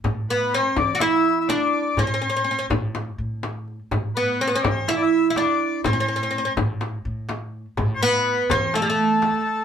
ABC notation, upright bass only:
X:1
M:4/4
L:1/8
Q:1/4=124
K:none
V:1 name="Upright bass" clef=bass
A,,3 E,,4 z | A,,3 A,,2 A,,3 | A,,3 E,,4 z | A,,3 A,,2 A,,3 |
A,,3 E,,4 z |]